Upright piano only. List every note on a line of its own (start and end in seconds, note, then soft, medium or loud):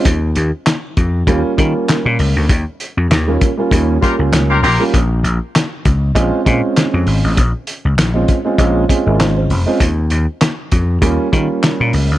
1.27 1.50 G3 loud
1.27 1.51 A#3 loud
1.27 1.51 C#4 loud
1.27 1.51 F4 loud
1.57 2.45 G3 medium
1.57 2.46 A#3 loud
1.57 2.46 C#4 medium
1.57 2.46 F4 loud
3.27 3.48 G3 medium
3.27 3.49 A#3 medium
3.27 3.49 C#4 medium
3.27 3.49 F4 medium
3.57 3.67 G3 medium
3.57 3.68 A#3 medium
3.57 3.68 C#4 medium
3.57 3.68 F4 medium
3.71 3.94 G3 loud
3.71 3.94 A#3 medium
3.71 3.95 C#4 medium
3.71 3.95 F4 loud
4.01 4.14 G3 medium
4.01 4.14 A#3 medium
4.01 4.14 C#4 medium
4.01 4.15 F4 loud
4.18 4.61 G3 medium
4.18 4.61 A#3 medium
4.18 4.61 C#4 medium
4.18 4.62 F4 medium
4.80 4.93 G3 medium
4.80 4.93 A#3 medium
4.80 4.94 C#4 medium
4.80 4.94 F4 loud
6.15 6.38 G#3 loud
6.15 6.38 C4 loud
6.15 6.39 C#4 medium
6.15 6.39 F4 loud
6.45 7.33 G#3 medium
6.45 7.33 C4 medium
6.45 7.33 C#4 medium
6.45 7.34 F4 loud
8.14 8.35 G#3 medium
8.14 8.35 C4 medium
8.14 8.36 C#4 medium
8.14 8.36 F4 medium
8.45 8.55 G#3 medium
8.45 8.55 C4 medium
8.45 8.55 C#4 medium
8.45 8.56 F4 loud
8.58 8.81 G#3 loud
8.58 8.82 C4 medium
8.58 8.82 C#4 loud
8.58 8.82 F4 loud
8.89 9.01 G#3 medium
8.89 9.01 C4 medium
8.89 9.02 C#4 medium
8.89 9.02 F4 loud
8.89 9.05 G#4 medium
9.06 9.48 G#3 medium
9.06 9.48 C4 medium
9.06 9.49 C#4 medium
9.06 9.13 E4 medium
9.06 9.19 A#4 medium
9.14 9.52 F4 loud
9.20 9.36 C5 medium
9.37 9.78 C5 medium
9.66 9.80 G#3 medium
9.66 9.80 C4 medium
9.66 9.81 C#4 medium
9.66 9.81 F4 loud
11.02 11.25 G3 loud
11.02 11.25 A#3 medium
11.02 11.25 C#4 loud
11.02 11.26 F4 loud
11.32 12.18 G3 medium
11.32 12.18 A#3 medium
11.32 12.18 C#4 medium
11.32 12.18 F4 loud